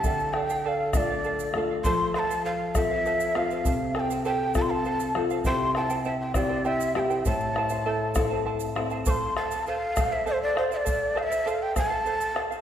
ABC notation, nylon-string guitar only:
X:1
M:6/8
L:1/8
Q:3/8=66
K:Flyd
V:1 name="Nylon-string guitar"
D,3 [A,DF]2 [A,DF] | F,3 [CFA]2 [CFA] | C,3 [CFA]2 [CFA] | C,3 [CEG]2 [CEG] |
A,,3 [CEA]2 [CEA] | z6 | z6 |]